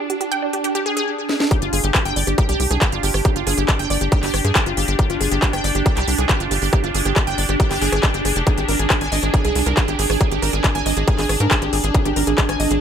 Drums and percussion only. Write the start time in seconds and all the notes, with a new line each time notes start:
0.10 closed hi-hat
0.21 closed hi-hat
0.32 closed hi-hat
0.53 closed hi-hat
0.64 closed hi-hat
0.75 closed hi-hat
0.97 closed hi-hat
1.29 snare
1.40 snare
1.51 kick, cross-stick, closed hi-hat
1.62 closed hi-hat
1.73 open hi-hat
1.84 closed hi-hat
1.95 kick, cross-stick, clap, closed hi-hat
2.05 closed hi-hat
2.16 open hi-hat
2.27 cross-stick, closed hi-hat
2.38 kick, closed hi-hat
2.49 closed hi-hat
2.60 open hi-hat
2.71 cross-stick, closed hi-hat
2.82 kick, clap, closed hi-hat
2.92 closed hi-hat
3.03 open hi-hat
3.14 cross-stick, open hi-hat
3.25 kick, closed hi-hat
3.36 closed hi-hat
3.47 cross-stick, open hi-hat
3.58 closed hi-hat
3.68 kick, clap, closed hi-hat
3.79 closed hi-hat
3.90 cross-stick, open hi-hat
4.01 closed hi-hat
4.12 kick, closed hi-hat
4.23 clap, open hi-hat
4.34 cross-stick, open hi-hat
4.45 closed hi-hat
4.55 kick, clap, closed hi-hat
4.66 cross-stick, closed hi-hat
4.77 open hi-hat
4.88 closed hi-hat
4.99 kick, closed hi-hat
5.10 cross-stick, closed hi-hat
5.21 open hi-hat
5.32 closed hi-hat
5.42 kick, clap, closed hi-hat
5.53 cross-stick, closed hi-hat
5.64 open hi-hat
5.75 closed hi-hat
5.86 kick, cross-stick, closed hi-hat
5.97 clap, closed hi-hat
6.08 open hi-hat
6.18 closed hi-hat
6.29 kick, cross-stick, clap, closed hi-hat
6.40 closed hi-hat
6.51 open hi-hat
6.62 open hi-hat
6.73 kick, cross-stick, closed hi-hat
6.84 closed hi-hat
6.95 open hi-hat
7.05 cross-stick, closed hi-hat
7.16 kick, clap, closed hi-hat
7.27 closed hi-hat
7.38 open hi-hat
7.49 cross-stick, closed hi-hat
7.60 kick, closed hi-hat
7.71 clap, open hi-hat
7.82 open hi-hat
7.92 cross-stick, closed hi-hat
8.03 kick, clap, closed hi-hat
8.14 closed hi-hat
8.25 cross-stick, open hi-hat
8.36 closed hi-hat
8.47 kick, cross-stick, closed hi-hat
8.58 closed hi-hat
8.68 open hi-hat
8.79 closed hi-hat
8.90 kick, cross-stick, clap, closed hi-hat
9.01 closed hi-hat
9.12 open hi-hat
9.23 cross-stick, closed hi-hat
9.34 kick, closed hi-hat
9.45 closed hi-hat
9.55 open hi-hat
9.66 cross-stick, closed hi-hat
9.77 kick, clap, closed hi-hat
9.88 closed hi-hat
9.99 open hi-hat
10.10 cross-stick, open hi-hat
10.21 kick, closed hi-hat
10.32 closed hi-hat
10.42 cross-stick, open hi-hat
10.53 closed hi-hat
10.64 kick, clap, closed hi-hat
10.75 closed hi-hat
10.86 cross-stick, open hi-hat
10.97 closed hi-hat
11.08 kick, closed hi-hat
11.18 clap, open hi-hat
11.29 cross-stick, open hi-hat
11.40 closed hi-hat
11.51 kick, clap, closed hi-hat
11.62 cross-stick, closed hi-hat
11.73 open hi-hat
11.84 closed hi-hat
11.95 kick, closed hi-hat
12.05 cross-stick, closed hi-hat
12.16 open hi-hat
12.27 closed hi-hat
12.38 kick, clap, closed hi-hat
12.49 cross-stick, closed hi-hat
12.60 open hi-hat
12.71 closed hi-hat